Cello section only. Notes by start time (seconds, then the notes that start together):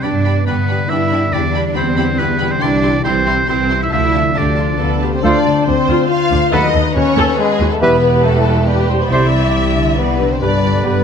0.05 D4
0.48 B3
0.91 E4
1.34 D4
1.76 C4
2.19 B3
2.51 C4
2.61 D4
3.05 C4
3.48 C4
3.80 E4
3.91 E4
4.35 D4
5.23 D2
5.45 D2
5.66 D2
5.88 D2
6.31 D2
6.52 D#2
6.74 D#2
6.95 D#2
7.17 D#2
7.60 D#2
7.82 E2
9.11 C3
9.55 C3
9.76 D3
9.99 E3
10.20 D3
10.42 G2
10.85 G2